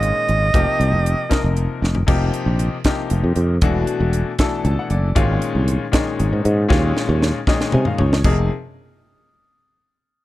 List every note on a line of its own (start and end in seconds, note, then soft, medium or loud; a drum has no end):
0.00 0.11 G#1 medium
0.00 0.44 A#2 medium
0.00 0.44 D#3 medium
0.00 0.44 G#3 medium
0.00 0.45 C#4 medium
0.00 0.44 F4 medium
0.00 1.58 D#5 medium
0.00 closed hi-hat medium
0.29 0.50 G#1 medium
0.29 closed hi-hat medium
0.54 0.65 F1 medium
0.54 1.21 C3 medium
0.54 1.22 F3 medium
0.54 1.22 A#3 medium
0.54 1.22 D#4 medium
0.54 1.22 G4 loud
0.54 kick loud
0.54 closed hi-hat medium
0.80 0.93 C2 medium
0.80 closed hi-hat medium
0.91 1.13 F1 medium
1.06 closed hi-hat medium
1.29 1.98 C3 medium
1.29 1.98 F3 medium
1.29 1.98 A#3 medium
1.29 1.98 D#4 medium
1.29 1.98 A#4 medium
1.29 kick medium
1.29 snare loud
1.29 closed hi-hat medium
1.44 1.65 F1 medium
1.57 closed hi-hat medium
1.82 2.04 F1 medium
1.82 snare medium
1.95 floor tom medium
2.07 2.29 F1 loud
2.07 2.75 C3 medium
2.07 2.75 F3 medium
2.07 2.75 A#3 medium
2.07 2.75 D#4 medium
2.07 2.76 G4 loud
2.07 kick loud
2.07 crash medium
2.34 closed hi-hat medium
2.46 2.68 A#1 medium
2.59 closed hi-hat medium
2.84 3.53 C3 medium
2.84 3.53 F3 medium
2.84 3.53 A#3 medium
2.84 3.53 D#4 medium
2.84 3.53 G4 medium
2.84 kick medium
2.84 snare loud
2.84 closed hi-hat medium
3.10 3.22 F1 medium
3.10 closed hi-hat medium
3.24 3.34 F2 medium
3.36 3.58 F2 medium
3.36 closed hi-hat medium
3.61 3.83 E1 medium
3.61 4.30 B2 medium
3.61 4.30 E3 medium
3.61 4.30 A3 medium
3.61 4.30 D4 medium
3.61 4.30 F#4 loud
3.61 kick loud
3.61 closed hi-hat medium
3.87 closed hi-hat medium
4.00 4.22 E1 medium
4.13 closed hi-hat medium
4.39 5.07 B2 medium
4.39 5.07 E3 medium
4.39 5.07 A3 medium
4.39 5.07 D4 medium
4.39 5.07 A4 medium
4.39 kick medium
4.39 snare loud
4.39 closed hi-hat medium
4.65 4.76 C#2 medium
4.65 4.78 A5 medium
4.65 closed hi-hat medium
4.79 4.91 F#5 medium
4.90 5.12 F#1 medium
4.90 5.15 D5 medium
4.90 closed hi-hat medium
5.15 5.38 G#1 loud
5.15 5.83 A#2 medium
5.15 5.84 D#3 medium
5.15 5.84 G#3 medium
5.15 5.84 C#4 medium
5.15 5.84 F4 loud
5.15 kick loud
5.15 closed hi-hat medium
5.42 closed hi-hat medium
5.55 5.76 C2 medium
5.68 closed hi-hat medium
5.92 6.60 A#2 medium
5.92 6.60 D#3 medium
5.92 6.61 G#3 medium
5.92 6.61 C#4 medium
5.92 6.61 D#4 medium
5.92 kick medium
5.92 snare loud
5.92 closed hi-hat medium
6.20 6.30 G#1 medium
6.20 closed hi-hat medium
6.33 6.43 G#2 medium
6.45 6.67 G#2 medium
6.45 closed hi-hat medium
6.69 6.92 D#2 medium
6.69 7.37 A#2 loud
6.69 7.37 D#3 medium
6.69 7.37 G#3 medium
6.69 7.37 C#4 medium
6.69 7.38 F4 loud
6.69 kick loud
6.69 snare medium
6.97 snare medium
7.09 7.30 D#2 medium
7.22 snare medium
7.47 8.15 A#2 medium
7.47 8.15 D#3 medium
7.47 8.15 G#3 medium
7.47 8.15 C#4 medium
7.47 8.16 D#4 medium
7.47 kick medium
7.47 snare medium
7.61 snare medium
7.72 7.85 C3 medium
7.72 7.85 G#5 medium
7.72 mid tom medium
7.85 7.99 F5 medium
7.85 floor tom medium
7.98 8.21 C#2 medium
7.98 8.23 C#5 medium
7.98 floor tom medium
8.13 snare medium
8.24 8.48 F1 medium
8.24 8.49 C3 medium
8.24 8.49 F3 medium
8.24 8.49 A#3 medium
8.24 8.49 D#4 medium
8.24 8.49 G#4 medium
8.24 kick loud
8.24 crash medium